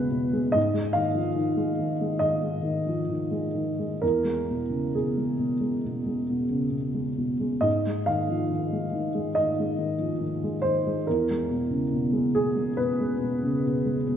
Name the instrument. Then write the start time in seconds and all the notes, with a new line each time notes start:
upright piano
Already playing: B2 C#3 G#3 B4
0.10 B2
0.33 G#3
0.52 G#2 D#5
0.74 G#3
0.93 D#3 F5
1.15 F3
1.36 D#3
1.57 G#3
1.79 D#3
2.01 G#3
2.19 D#3 D#5
2.42 G#3
2.62 D#3
2.87 F3
3.09 D#3
3.31 G#3
3.54 D#3
3.79 G#3
4.02 E2 A#4
4.25 G#3
4.50 B2
4.70 C#3
4.95 B2 G#4
5.17 G#3
5.38 B2
5.60 G#3
5.85 B2
6.06 G#3
6.30 B2
6.50 C#3
6.71 B2
6.94 G#3
7.18 B2
7.40 G#3
7.61 G#2 D#5
7.87 G#3
8.06 D#3 F5
8.29 F3
8.51 D#3
8.72 G#3
8.93 D#3
9.15 G#3
9.35 D#3 D#5
9.60 G#3
9.78 D#3
9.99 F3
10.19 D#3
10.43 G#3
10.62 D#3 C5
10.87 G#3
11.07 E2 A#4
11.30 G#3
11.51 B2
11.70 C#3
11.93 B2
12.12 G#3
12.35 B2 G#4
12.56 G#3
12.77 B2 B4
13.00 G#3
13.20 B2
13.43 C#3
13.65 B2
13.85 G#3
14.08 B2